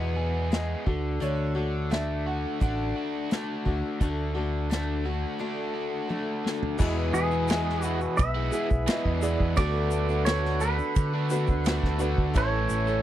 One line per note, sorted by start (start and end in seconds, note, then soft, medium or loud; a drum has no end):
0.00 0.17 E2 medium
0.00 0.51 E2 medium
0.00 0.74 E2 medium
0.00 0.51 B2 medium
0.00 0.49 E3 medium
0.00 0.52 E3 medium
0.00 0.50 G#3 medium
0.00 0.51 G#3 medium
0.00 0.52 B3 medium
0.00 0.86 B3 medium
0.00 0.15 G#4 medium
0.00 0.52 G#4 medium
0.16 0.86 G#4 medium
0.50 0.86 E3 medium
0.50 0.86 G#3 medium
0.50 0.87 G#3 medium
0.50 0.86 B3 medium
0.50 0.86 G#4 medium
0.50 snare loud
0.50 closed hi-hat soft
0.86 1.17 D2 medium
0.86 1.21 D3 medium
0.86 1.19 A3 soft
0.86 1.20 D4 medium
0.86 1.20 F#4 medium
0.86 kick medium
1.20 2.45 D2 medium
1.20 1.56 D3 medium
1.20 1.55 D3 medium
1.20 1.56 A3 medium
1.20 1.55 D4 medium
1.20 1.53 F#4 medium
1.20 1.90 C#5 medium
1.20 closed hi-hat medium
1.55 3.31 D3 medium
1.55 1.90 A3 soft
1.55 1.91 D4 medium
1.55 1.90 F#4 medium
1.90 2.59 D3 medium
1.90 3.30 A3 medium
1.90 2.60 A3 medium
1.90 2.60 D4 medium
1.90 2.61 F#4 medium
1.90 2.25 E5 medium
1.90 snare loud
1.90 closed hi-hat soft
2.26 2.95 F#4 medium
2.26 2.60 F#5 medium
2.60 2.92 A1 medium
2.60 3.28 D3 medium
2.60 3.30 A3 medium
2.60 3.30 D4 medium
2.60 4.36 D4 medium
2.60 3.31 F#4 medium
2.60 2.95 F#5 medium
2.60 kick medium
2.60 closed hi-hat soft
2.96 4.71 F#4 medium
3.30 3.65 D3 medium
3.30 3.66 A3 medium
3.30 4.69 A3 medium
3.30 3.65 D4 medium
3.30 3.64 F#4 medium
3.30 snare medium
3.30 closed hi-hat medium
3.65 3.81 D2 medium
3.65 4.00 D3 medium
3.65 4.00 A3 soft
3.65 4.01 D4 soft
3.65 4.00 F#4 medium
3.65 kick medium
4.01 5.24 D2 medium
4.01 4.34 D3 medium
4.01 4.36 D3 medium
4.01 4.36 A3 medium
4.01 4.35 D4 medium
4.01 4.33 F#4 medium
4.01 kick medium
4.01 closed hi-hat medium
4.35 6.10 D3 medium
4.35 4.70 A3 medium
4.35 4.70 D4 soft
4.35 4.70 F#4 soft
4.69 5.05 D3 medium
4.69 6.09 A3 medium
4.69 5.06 A3 medium
4.69 5.05 D4 medium
4.69 5.03 F#4 medium
4.69 snare medium
4.69 closed hi-hat medium
5.05 5.38 A3 soft
5.05 5.39 D4 soft
5.05 5.39 F#4 soft
5.05 5.73 F#4 medium
5.39 6.08 D3 medium
5.39 6.09 A3 medium
5.39 6.09 D4 medium
5.39 6.80 D4 medium
5.39 6.10 F#4 medium
5.75 6.79 F#4 medium
6.09 6.78 D3 medium
6.09 6.79 A3 medium
6.09 6.78 A3 medium
6.09 6.78 D4 medium
6.09 6.79 F#4 medium
6.09 high tom soft
6.44 6.79 D3 medium
6.44 snare medium
6.63 floor tom medium
6.78 7.48 E2 medium
6.78 7.11 E2 loud
6.78 7.48 B2 medium
6.78 7.49 B2 medium
6.78 7.47 E3 medium
6.78 7.32 E3 medium
6.78 7.47 G#3 medium
6.78 7.31 G#3 loud
6.78 7.49 B3 medium
6.78 7.32 B3 loud
6.78 7.94 E4 medium
6.78 7.30 E4 loud
6.78 7.49 G#4 medium
6.78 9.55 G#4 medium
6.78 7.95 G#4 medium
6.78 7.95 B4 medium
6.78 9.55 B4 medium
6.78 9.55 E5 medium
6.78 12.31 B5 medium
6.78 kick loud
6.78 crash loud
6.78 shaker medium
7.13 8.06 E2 medium
7.13 7.84 G#4 medium
7.13 shaker medium
7.31 7.49 E3 medium
7.31 7.50 G#3 medium
7.31 7.51 B3 medium
7.31 7.50 E4 medium
7.31 shaker soft
7.48 8.19 E2 medium
7.48 8.19 B2 medium
7.48 8.53 E3 medium
7.48 7.83 E3 medium
7.48 8.53 G#3 medium
7.48 7.83 G#3 medium
7.48 8.52 B3 medium
7.48 7.85 B3 medium
7.48 7.85 E4 medium
7.48 8.51 G#4 medium
7.48 snare loud
7.48 ride bell medium
7.48 shaker medium
7.69 snare soft
7.82 8.01 E3 medium
7.82 8.01 G#3 medium
7.82 8.00 B3 medium
7.82 8.00 E4 medium
7.82 8.14 F#4 medium
7.82 shaker medium
8.01 muted overdriven electric guitar stroke medium
8.01 shaker soft
8.17 8.49 B1 medium
8.17 9.14 E5 loud
8.17 kick loud
8.17 ride bell medium
8.17 shaker medium
8.35 8.51 E3 medium
8.35 8.52 G#3 medium
8.35 8.53 B3 medium
8.35 8.53 E4 medium
8.52 8.69 E3 medium
8.52 8.87 E3 soft
8.52 8.70 G#3 medium
8.52 8.87 G#3 soft
8.52 8.88 B3 medium
8.52 8.69 B3 medium
8.52 9.10 E4 medium
8.52 8.69 E4 medium
8.52 8.87 G#4 medium
8.52 9.11 G#4 medium
8.52 9.11 B4 medium
8.52 shaker medium
8.70 8.86 B1 medium
8.70 muted overdriven electric guitar stroke soft
8.70 kick medium
8.70 shaker soft
8.87 9.55 E2 medium
8.87 9.55 B2 medium
8.87 9.23 E3 medium
8.87 9.21 E3 medium
8.87 9.21 G#3 medium
8.87 9.22 B3 medium
8.87 9.21 B3 medium
8.87 9.23 E4 medium
8.87 9.20 G#4 medium
8.87 snare loud
8.87 ride bell medium
8.87 shaker medium
9.05 9.36 E2 medium
9.05 kick medium
9.14 9.56 D5 loud
9.21 9.55 E3 medium
9.21 9.57 E3 medium
9.21 9.57 G#3 medium
9.21 9.55 G#3 medium
9.21 9.57 B3 medium
9.21 9.56 B3 medium
9.21 9.51 E4 medium
9.21 9.56 E4 medium
9.21 9.57 G#4 medium
9.21 9.51 G#4 medium
9.21 9.52 D5 loud
9.21 shaker medium
9.40 9.56 E2 medium
9.40 kick medium
9.56 10.80 D2 medium
9.56 10.25 D3 medium
9.56 10.26 D3 medium
9.56 10.28 A3 medium
9.56 10.10 A3 loud
9.56 10.27 B3 medium
9.56 10.71 D4 medium
9.56 12.32 D4 medium
9.56 10.09 D4 medium
9.56 10.72 F#4 medium
9.56 10.07 F#4 loud
9.56 10.27 F#4 medium
9.56 13.02 A4 medium
9.56 10.72 B4 medium
9.56 10.25 D5 medium
9.56 12.32 F#5 medium
9.56 kick loud
9.56 ride bell medium
9.56 shaker medium
9.91 shaker medium
10.09 10.26 A3 medium
10.09 10.26 D4 medium
10.09 10.26 F#4 medium
10.09 shaker soft
10.25 10.60 D3 medium
10.25 11.31 D3 medium
10.25 10.61 A3 medium
10.25 11.31 A3 medium
10.25 11.31 B3 medium
10.25 10.61 D4 medium
10.25 10.62 F#4 loud
10.25 10.62 C#5 loud
10.25 snare loud
10.25 ride bell medium
10.25 shaker medium
10.29 11.29 F#4 medium
10.45 snare soft
10.60 11.13 D3 medium
10.60 10.78 A3 medium
10.60 10.78 D4 medium
10.60 10.78 F#4 medium
10.60 11.96 B4 medium
10.60 shaker medium
10.79 muted overdriven electric guitar stroke soft
10.79 shaker soft
10.96 11.50 D3 loud
10.96 kick loud
10.96 ride bell medium
10.96 shaker medium
11.13 11.31 A3 medium
11.13 11.31 D4 medium
11.13 11.32 F#4 medium
11.30 11.65 D3 medium
11.30 11.48 A3 medium
11.30 11.64 A3 soft
11.30 11.65 B3 soft
11.30 11.88 D4 medium
11.30 11.48 D4 medium
11.30 11.65 F#4 medium
11.30 11.88 F#4 medium
11.30 11.48 F#4 medium
11.30 11.88 B4 medium
11.30 shaker medium
11.47 11.79 D2 loud
11.47 muted overdriven electric guitar stroke soft
11.47 kick medium
11.47 shaker soft
11.64 11.99 D3 medium
11.64 12.00 A3 medium
11.64 12.00 A3 loud
11.64 11.99 B3 medium
11.64 12.01 D4 loud
11.64 11.97 F#4 medium
11.64 12.01 F#4 loud
11.64 snare loud
11.64 ride bell medium
11.64 shaker medium
11.83 12.14 D2 medium
11.83 kick medium
11.83 snare soft
11.99 12.33 D3 medium
11.99 12.33 A3 medium
11.99 12.34 B3 medium
11.99 12.29 D4 loud
11.99 12.34 D4 medium
11.99 12.34 F#4 medium
11.99 12.29 F#4 medium
11.99 12.34 F#4 medium
11.99 12.29 B4 medium
11.99 shaker medium
12.18 12.33 D2 medium
12.18 kick medium
12.34 12.66 A1 loud
12.34 13.02 A2 medium
12.34 13.01 E3 medium
12.34 13.02 E3 loud
12.34 13.02 A3 medium
12.34 12.88 A3 loud
12.34 13.02 C#4 medium
12.34 12.87 C#4 loud
12.34 13.02 E4 medium
12.34 13.02 A4 medium
12.34 12.86 A4 loud
12.34 13.02 C#5 medium
12.34 13.02 E5 medium
12.34 13.02 C#6 medium
12.34 kick loud
12.34 ride bell medium
12.34 shaker medium
12.38 13.02 C#5 medium
12.69 13.02 A1 medium
12.69 shaker medium
12.87 13.02 A3 medium
12.87 13.02 C#4 medium
12.87 13.02 A4 medium
12.87 shaker soft